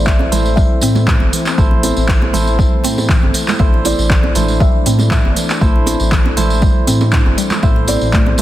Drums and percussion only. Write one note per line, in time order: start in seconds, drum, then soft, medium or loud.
0.06 kick loud
0.06 clap loud
0.06 tambourine soft
0.19 muted conga medium
0.19 high conga loud
0.32 open hi-hat medium
0.32 tambourine medium
0.32 low conga loud
0.46 tambourine medium
0.57 kick loud
0.57 tambourine soft
0.57 muted conga soft
0.81 open hi-hat loud
0.81 tambourine loud
0.81 muted conga medium
0.95 tambourine medium
0.95 high conga loud
0.95 low conga medium
1.08 kick loud
1.08 clap loud
1.08 tambourine soft
1.08 muted conga soft
1.08 low conga loud
1.20 high conga loud
1.33 open hi-hat medium
1.33 tambourine medium
1.46 clap medium
1.46 tambourine medium
1.46 muted conga medium
1.58 kick loud
1.58 tambourine soft
1.71 muted conga medium
1.83 open hi-hat loud
1.83 tambourine medium
1.83 high conga loud
1.97 tambourine medium
1.97 muted conga soft
2.08 kick loud
2.08 clap loud
2.08 tambourine soft
2.22 muted conga medium
2.22 high conga loud
2.33 open hi-hat medium
2.33 tambourine medium
2.33 low conga medium
2.47 tambourine medium
2.59 kick loud
2.59 tambourine soft
2.59 muted conga soft
2.59 high conga medium
2.84 open hi-hat medium
2.84 tambourine medium
2.84 muted conga medium
2.98 tambourine medium
2.98 high conga loud
3.09 kick loud
3.09 clap loud
3.09 tambourine soft
3.09 muted conga soft
3.23 high conga medium
3.34 open hi-hat medium
3.34 tambourine medium
3.48 clap medium
3.48 tambourine medium
3.48 muted conga soft
3.48 high conga medium
3.48 low conga loud
3.59 kick loud
3.59 tambourine soft
3.74 muted conga soft
3.85 open hi-hat medium
3.85 tambourine loud
3.85 high conga loud
3.99 tambourine medium
3.99 muted conga soft
4.10 kick loud
4.10 clap loud
4.23 muted conga soft
4.23 high conga loud
4.35 open hi-hat medium
4.35 tambourine loud
4.35 low conga medium
4.48 tambourine medium
4.60 kick loud
4.60 tambourine soft
4.60 muted conga soft
4.86 open hi-hat loud
4.86 tambourine medium
4.86 muted conga medium
4.99 tambourine medium
4.99 high conga loud
4.99 low conga medium
5.11 kick loud
5.11 clap loud
5.11 tambourine soft
5.11 muted conga soft
5.11 low conga loud
5.25 high conga medium
5.36 open hi-hat medium
5.36 tambourine loud
5.50 clap medium
5.50 tambourine medium
5.50 muted conga medium
5.61 kick loud
5.61 tambourine soft
5.76 muted conga soft
5.86 open hi-hat medium
5.86 tambourine medium
5.86 high conga loud
6.00 tambourine medium
6.00 muted conga soft
6.11 kick loud
6.11 clap loud
6.11 tambourine soft
6.26 muted conga medium
6.26 high conga loud
6.37 open hi-hat medium
6.37 tambourine medium
6.37 low conga loud
6.50 tambourine medium
6.62 kick loud
6.62 tambourine soft
6.62 muted conga soft
6.62 high conga medium
6.87 open hi-hat medium
6.87 tambourine loud
6.87 muted conga medium
7.01 tambourine medium
7.01 high conga loud
7.12 kick loud
7.12 clap loud
7.12 tambourine soft
7.26 high conga medium
7.38 open hi-hat medium
7.38 tambourine medium
7.50 clap medium
7.50 tambourine medium
7.50 muted conga medium
7.50 high conga medium
7.50 low conga loud
7.63 kick loud
7.63 tambourine soft
7.76 muted conga medium
7.88 open hi-hat medium
7.88 tambourine medium
7.88 high conga loud
8.00 tambourine medium
8.00 muted conga soft
8.13 kick loud
8.13 clap loud
8.13 tambourine soft
8.26 muted conga soft
8.26 high conga loud
8.38 open hi-hat medium
8.38 tambourine medium
8.38 low conga medium